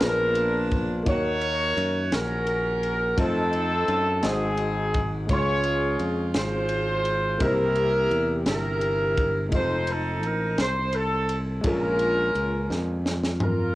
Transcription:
0.00 1.03 A#1 loud
0.00 1.02 A#2 medium
0.00 1.01 A#3 medium
0.00 1.07 B3 medium
0.00 1.04 D4 medium
0.00 1.04 F4 medium
0.00 1.07 G#4 medium
0.00 0.76 A#4 loud
0.00 snare loud
0.00 ride bell medium
0.06 1.09 D4 medium
0.35 ride bell soft
0.71 kick medium
0.71 ride bell soft
1.03 1.73 D#2 medium
1.03 2.08 D#3 medium
1.03 3.12 A#3 medium
1.03 3.13 D#4 soft
1.03 3.14 F#4 medium
1.03 kick loud
1.03 ride bell medium
1.09 2.10 F#4 medium
1.09 2.10 A#4 medium
1.09 3.15 C#5 medium
1.09 2.09 C#5 loud
1.41 ride bell soft
1.77 2.09 F#2 medium
1.77 ride bell soft
2.12 3.14 A#1 medium
2.12 3.15 C#4 medium
2.12 3.15 F#4 medium
2.12 3.19 A#4 loud
2.12 snare loud
2.12 ride bell medium
2.47 ride bell soft
2.83 ride bell soft
3.17 3.84 F2 loud
3.17 4.23 A3 medium
3.17 4.21 C4 medium
3.17 4.22 D#4 medium
3.17 4.21 D#4 medium
3.17 4.24 F4 medium
3.17 4.24 A4 loud
3.17 4.24 C5 medium
3.17 kick loud
3.17 ride bell medium
3.53 ride bell soft
3.88 4.21 F#2 medium
3.88 ride bell soft
4.23 5.25 G#1 medium
4.23 5.26 G#2 medium
4.23 5.25 G#3 medium
4.23 5.14 C4 medium
4.23 5.30 D#4 medium
4.23 5.14 D#4 medium
4.23 5.30 F#4 medium
4.23 5.14 G#4 medium
4.23 5.30 C5 medium
4.23 snare loud
4.23 ride bell medium
4.57 ride bell soft
4.94 kick loud
4.94 ride bell soft
5.27 5.96 C#2 loud
5.27 6.31 C#3 soft
5.27 7.36 G#3 medium
5.27 7.37 C#4 soft
5.27 kick loud
5.27 ride bell medium
5.31 7.38 F4 soft
5.31 6.33 F4 medium
5.31 6.32 G#4 medium
5.31 6.05 C#5 loud
5.31 7.39 C6 medium
5.63 ride bell soft
5.99 6.32 F2 medium
5.99 ride bell soft
6.34 7.37 G#1 medium
6.34 7.38 F4 medium
6.34 7.38 G#4 medium
6.34 7.38 C5 loud
6.34 snare loud
6.34 ride bell medium
6.69 ride bell soft
7.05 ride bell soft
7.38 8.07 C2 loud
7.38 8.43 C3 medium
7.38 9.47 A#3 medium
7.38 7.47 D#4 soft
7.38 8.43 E4 medium
7.38 8.43 G4 medium
7.38 8.43 A#4 loud
7.38 kick loud
7.38 ride bell medium
7.42 9.49 G4 medium
7.42 9.50 C5 medium
7.47 9.52 E4 soft
7.76 ride bell soft
8.11 8.44 E2 medium
8.11 ride bell soft
8.46 9.53 G1 loud
8.46 9.50 E4 medium
8.46 9.50 G4 medium
8.46 9.50 A#4 medium
8.46 snare loud
8.46 ride bell medium
8.81 ride bell soft
9.18 kick loud
9.18 ride bell soft
9.49 10.23 F1 loud
9.49 9.57 G#3 soft
9.49 11.59 D#4 soft
9.49 kick medium
9.49 ride bell medium
9.53 11.62 C4 medium
9.53 10.56 D#4 medium
9.53 11.61 F4 medium
9.53 9.89 A4 medium
9.53 11.61 C5 medium
9.53 9.90 C5 loud
9.87 10.24 A4 medium
9.87 ride bell soft
10.23 10.55 A1 loud
10.23 10.60 A#4 medium
10.23 ride bell soft
10.58 11.60 C2 medium
10.58 10.95 C5 medium
10.58 snare loud
10.58 ride bell medium
10.93 11.38 A4 medium
10.93 ride bell soft
11.29 ride bell soft
11.61 12.31 A#1 loud
11.61 12.66 A#2 medium
11.61 13.70 G#3 medium
11.61 13.71 C#4 medium
11.61 13.72 F4 soft
11.61 kick loud
11.61 ride bell medium
11.67 13.03 C#4 medium
11.67 13.03 F4 medium
11.67 13.03 A#4 loud
11.67 13.73 A#4 medium
11.99 ride bell soft
12.35 12.67 C#2 medium
12.35 ride bell soft
12.70 13.72 F2 loud
12.70 snare medium
13.06 snare medium
13.23 snare medium
13.40 13.75 F4 medium
13.40 13.75 A#4 loud
13.40 floor tom medium

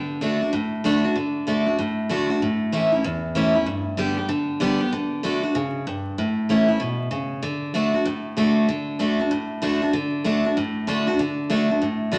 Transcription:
0.00 0.20 D3 medium
0.21 0.41 D3 medium
0.21 0.41 A3 medium
0.21 0.41 D4 medium
0.21 0.40 F#4 medium
0.41 0.53 D4 soft
0.41 0.53 F#4 medium
0.53 1.14 A2 medium
0.84 1.04 D3 medium
0.84 1.04 A3 medium
0.84 1.04 D4 loud
0.84 1.03 F#4 loud
1.04 1.16 D4 medium
1.04 1.16 F#4 medium
1.16 1.46 D3 medium
1.47 1.66 D3 medium
1.47 1.67 A3 medium
1.47 1.67 D4 medium
1.47 1.65 F#4 medium
1.66 1.79 D4 soft
1.66 1.78 F#4 medium
1.79 2.39 A2 medium
2.09 2.29 D3 medium
2.09 2.29 A3 medium
2.09 2.30 D4 loud
2.09 2.29 F#4 medium
2.30 2.42 D4 medium
2.30 2.41 F#4 medium
2.42 3.02 A2 medium
2.72 2.92 E3 medium
2.72 2.92 A3 medium
2.72 2.92 C#4 medium
2.72 2.91 E4 medium
2.92 3.04 C#4 soft
2.92 3.04 E4 medium
3.04 3.65 E2 medium
3.35 3.54 E3 loud
3.35 3.55 A3 medium
3.35 3.55 C#4 loud
3.35 3.53 E4 loud
3.55 3.67 C#4 medium
3.55 3.66 E4 medium
3.66 4.27 G2 medium
3.97 4.17 D3 medium
3.97 4.17 G3 medium
3.97 4.17 B3 medium
3.97 4.16 G4 loud
4.17 4.29 B3 soft
4.17 4.29 G4 medium
4.29 4.59 D3 loud
4.60 4.80 D3 loud
4.60 4.80 G3 medium
4.60 4.80 B3 loud
4.60 4.79 G4 loud
4.81 4.92 B3 medium
4.81 4.92 G4 medium
4.93 5.22 D3 medium
5.23 5.42 D3 medium
5.23 5.43 A3 medium
5.23 5.43 D4 medium
5.23 5.42 F#4 loud
5.43 5.55 D4 soft
5.43 5.54 F#4 medium
5.55 5.85 C#3 medium
5.87 6.17 G2 medium
6.18 6.78 A2 medium
6.49 6.68 E3 medium
6.49 6.68 A3 medium
6.49 6.69 C#4 medium
6.49 6.67 E4 loud
6.68 6.80 C#4 soft
6.68 6.80 E4 medium
6.80 7.10 B2 medium
7.11 7.41 C#3 medium
7.42 7.73 D3 medium
7.74 7.93 D3 medium
7.74 7.93 A3 medium
7.74 7.94 D4 medium
7.74 7.93 F#4 loud
7.94 8.06 D4 soft
7.94 8.05 F#4 medium
8.05 8.66 A2 medium
8.37 8.67 D3 medium
8.37 8.67 A3 loud
8.37 8.67 D4 medium
8.37 8.68 F#4 loud
8.69 8.98 D3 medium
8.99 9.18 D3 medium
8.99 9.19 A3 medium
8.99 9.19 D4 medium
8.99 9.18 F#4 medium
9.19 9.31 D4 medium
9.19 9.30 F#4 medium
9.31 9.91 A2 loud
9.62 9.81 D3 medium
9.62 9.81 A3 medium
9.62 9.81 D4 loud
9.62 9.81 F#4 medium
9.82 9.94 D4 medium
9.82 9.93 F#4 medium
9.93 10.23 D3 medium
10.24 10.44 D3 medium
10.24 10.44 A3 medium
10.24 10.44 D4 medium
10.24 10.44 F#4 loud
10.45 10.57 D4 soft
10.45 10.56 F#4 medium
10.57 11.17 A2 loud
10.87 11.06 D3 medium
10.87 11.07 A3 loud
10.87 11.07 D4 loud
10.87 11.06 F#4 loud
11.07 11.19 D4 medium
11.07 11.18 F#4 medium
11.19 11.48 D3 loud
11.50 11.69 D3 medium
11.50 11.69 A3 medium
11.50 11.69 D4 medium
11.50 11.69 F#4 loud
11.70 11.82 D4 soft
11.70 11.81 F#4 medium
11.82 12.18 A2 medium
12.12 12.18 D3 loud
12.12 12.18 A3 medium
12.12 12.18 D4 loud
12.12 12.18 F#4 loud

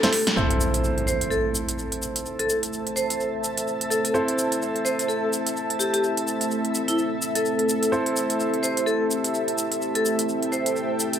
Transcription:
0.00 0.32 A3 medium
0.00 0.32 C4 medium
0.00 0.09 C4 medium
0.00 0.32 D4 medium
0.00 0.09 E4 medium
0.00 0.35 G4 medium
0.00 0.36 A4 medium
0.00 0.09 A4 medium
0.00 0.09 C5 medium
0.00 snare medium
0.00 closed hi-hat medium
0.12 snare loud
0.12 closed hi-hat medium
0.12 open hi-hat loud
0.27 snare medium
0.27 closed hi-hat medium
0.36 11.19 A3 medium
0.36 4.12 C4 medium
0.36 11.19 C4 medium
0.36 4.12 E4 medium
0.36 11.19 E4 medium
0.36 11.19 A4 medium
0.36 4.12 A4 medium
0.36 4.12 C5 medium
0.36 7.91 C5 medium
0.36 impact medium
0.36 shaker soft
0.51 closed hi-hat medium
0.59 11.19 E5 medium
0.59 shaker medium
0.74 closed hi-hat medium
0.74 shaker soft
0.81 9.04 A5 medium
0.81 shaker soft
0.98 closed hi-hat soft
1.07 1.29 C5 medium
1.07 shaker medium
1.21 closed hi-hat medium
1.21 shaker soft
1.31 1.46 A4 medium
1.31 shaker soft
1.55 shaker medium
1.69 closed hi-hat medium
1.69 shaker soft
1.79 shaker soft
1.92 closed hi-hat medium
2.02 shaker medium
2.16 closed hi-hat medium
2.16 shaker soft
2.26 shaker soft
2.39 2.50 A4 medium
2.39 closed hi-hat medium
2.49 shaker medium
2.63 closed hi-hat medium
2.63 shaker soft
2.73 shaker soft
2.87 closed hi-hat soft
2.96 3.34 C5 medium
2.96 shaker medium
3.10 closed hi-hat medium
3.10 shaker soft
3.20 shaker soft
3.44 shaker medium
3.57 closed hi-hat medium
3.57 shaker soft
3.68 shaker soft
3.81 closed hi-hat soft
3.90 4.00 A4 medium
3.90 shaker medium
4.05 4.11 A4 medium
4.05 closed hi-hat medium
4.05 shaker soft
4.14 7.90 C4 medium
4.14 7.90 E4 medium
4.14 7.90 A4 medium
4.14 7.90 C5 medium
4.14 shaker soft
4.28 closed hi-hat soft
4.38 shaker medium
4.52 closed hi-hat medium
4.52 shaker soft
4.62 shaker soft
4.76 closed hi-hat soft
4.85 5.07 C5 medium
4.85 shaker medium
4.99 closed hi-hat medium
4.99 shaker soft
5.09 5.24 A4 medium
5.09 shaker soft
5.33 shaker medium
5.47 closed hi-hat medium
5.47 shaker soft
5.57 shaker soft
5.70 closed hi-hat soft
5.79 5.89 G4 medium
5.79 shaker medium
5.94 6.00 G4 medium
5.94 closed hi-hat medium
5.94 shaker soft
6.04 shaker soft
6.17 closed hi-hat medium
6.27 shaker medium
6.41 closed hi-hat medium
6.41 shaker soft
6.51 shaker soft
6.65 closed hi-hat soft
6.75 shaker medium
6.88 6.99 E4 medium
6.88 closed hi-hat medium
6.88 shaker soft
6.98 shaker soft
7.22 shaker medium
7.35 8.01 A4 medium
7.35 closed hi-hat medium
7.35 shaker soft
7.45 shaker soft
7.59 closed hi-hat soft
7.69 shaker medium
7.83 closed hi-hat medium
7.83 shaker soft
7.92 11.19 C4 medium
7.92 11.19 E4 medium
7.92 11.19 G4 medium
7.92 11.19 A4 medium
7.92 11.19 C5 medium
7.92 shaker soft
8.06 closed hi-hat soft
8.16 shaker medium
8.30 closed hi-hat medium
8.30 shaker soft
8.40 shaker soft
8.54 closed hi-hat soft
8.63 8.85 C5 medium
8.63 shaker medium
8.77 closed hi-hat medium
8.77 shaker soft
8.86 9.02 A4 medium
8.86 11.19 G5 medium
8.86 shaker soft
9.11 shaker medium
9.24 closed hi-hat medium
9.24 shaker soft
9.34 shaker soft
9.48 closed hi-hat soft
9.58 shaker medium
9.72 closed hi-hat medium
9.72 shaker soft
9.82 shaker soft
9.95 10.06 A4 medium
9.95 closed hi-hat medium
10.05 shaker medium
10.19 closed hi-hat medium
10.19 shaker soft
10.29 shaker soft
10.43 closed hi-hat soft
10.52 10.90 C5 medium
10.52 shaker medium
10.66 closed hi-hat medium
10.66 shaker soft
10.76 shaker soft
11.00 shaker medium
11.13 closed hi-hat medium
11.13 shaker soft

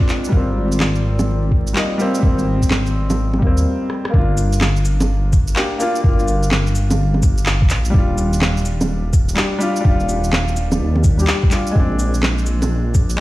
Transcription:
0.00 0.34 G#3 medium
0.00 0.34 C4 medium
0.00 3.66 C4 medium
0.00 0.34 D4 loud
0.00 3.66 F4 medium
0.00 3.66 A#4 medium
0.00 3.66 D5 medium
0.00 kick loud
0.09 clap medium
0.09 shaker soft
0.24 shaker soft
0.29 1.74 G#1 loud
0.29 1.72 G3 medium
0.29 1.73 A#3 medium
0.29 kick loud
0.36 1.75 C4 medium
0.72 shaker medium
0.80 clap loud
0.80 low bongo medium
0.95 shaker soft
1.19 low bongo medium
1.19 shaker medium
1.52 kick loud
1.67 shaker medium
1.73 1.94 G3 medium
1.73 1.96 A#3 medium
1.73 clap loud
1.78 1.97 D#4 medium
1.98 2.18 G3 loud
1.98 2.21 A#3 medium
1.98 2.22 C4 loud
1.98 shaker soft
2.15 shaker medium
2.19 3.44 G#1 loud
2.19 3.37 G3 medium
2.19 3.40 A#3 medium
2.19 kick loud
2.27 3.42 C4 medium
2.39 shaker soft
2.62 kick medium
2.62 shaker medium
2.71 clap loud
2.71 low bongo medium
2.86 shaker soft
3.10 low bongo medium
3.10 shaker medium
3.34 low bongo soft
3.39 3.66 D#2 medium
3.39 4.10 G3 medium
3.39 4.08 A#3 medium
3.39 kick loud
3.47 4.14 C4 medium
3.57 shaker medium
3.90 cross-stick medium
4.05 cross-stick medium
4.10 5.55 G1 loud
4.10 5.53 A#3 medium
4.10 kick loud
4.14 5.55 D4 medium
4.18 5.57 F4 medium
4.37 cabasa medium
4.53 shaker medium
4.61 clap loud
4.61 low bongo medium
4.76 shaker soft
4.85 cabasa medium
5.00 low bongo medium
5.00 shaker medium
5.33 kick loud
5.33 cabasa medium
5.48 shaker medium
5.55 5.76 A#3 medium
5.55 5.77 D4 medium
5.55 5.78 G4 medium
5.55 clap loud
5.78 5.99 A#3 loud
5.78 6.02 D4 medium
5.78 cabasa medium
5.78 shaker soft
5.82 6.03 F4 loud
5.96 shaker medium
6.00 7.72 G1 loud
6.00 7.19 A#3 medium
6.00 7.21 D4 medium
6.00 kick loud
6.08 7.23 F4 loud
6.19 shaker soft
6.28 cabasa medium
6.43 shaker medium
6.51 clap loud
6.51 low bongo medium
6.67 shaker soft
6.75 cabasa medium
6.90 low bongo medium
6.90 shaker medium
7.14 low bongo soft
7.22 kick loud
7.22 cabasa medium
7.38 shaker medium
7.46 clap loud
7.62 kick loud
7.70 7.85 A#1 loud
7.70 clap medium
7.70 cabasa medium
7.70 shaker soft
7.85 7.93 A#1 loud
7.85 shaker medium
7.90 9.36 D#1 loud
7.90 9.33 G3 medium
7.90 9.35 D4 medium
7.90 kick loud
7.98 9.37 F4 medium
8.18 cabasa medium
8.33 shaker medium
8.42 clap loud
8.42 low bongo medium
8.57 shaker soft
8.65 cabasa medium
8.81 low bongo medium
8.81 shaker medium
9.13 kick loud
9.13 cabasa medium
9.29 shaker medium
9.35 9.56 G3 medium
9.35 9.57 D4 medium
9.35 9.58 G4 medium
9.35 clap loud
9.59 9.79 G3 loud
9.59 9.83 D4 medium
9.59 cabasa medium
9.59 shaker soft
9.63 9.84 F4 loud
9.76 shaker medium
9.80 11.00 G3 medium
9.85 10.81 D#1 loud
9.85 11.02 D4 medium
9.85 11.04 F4 loud
9.85 kick loud
10.00 shaker soft
10.09 cabasa medium
10.24 shaker medium
10.33 clap loud
10.33 low bongo medium
10.48 shaker soft
10.56 cabasa medium
10.72 low bongo medium
10.72 shaker medium
10.79 11.26 D#2 loud
10.96 low bongo soft
11.04 kick loud
11.04 cabasa medium
11.18 11.48 G3 medium
11.18 11.50 D4 medium
11.18 11.51 G4 medium
11.18 shaker medium
11.27 clap loud
11.43 kick loud
11.49 11.72 G3 medium
11.49 11.73 D4 medium
11.49 11.74 F4 medium
11.49 clap medium
11.49 cabasa medium
11.49 shaker soft
11.67 shaker medium
11.71 13.14 G#3 medium
11.75 13.17 A#1 loud
11.75 13.16 C4 medium
11.75 kick loud
11.79 13.18 D4 medium
11.99 cabasa medium
12.14 shaker medium
12.23 clap loud
12.23 low bongo medium
12.38 shaker soft
12.46 cabasa medium
12.62 low bongo medium
12.62 shaker medium
12.94 kick loud
12.94 cabasa medium
13.10 shaker medium
13.16 13.20 G#3 medium

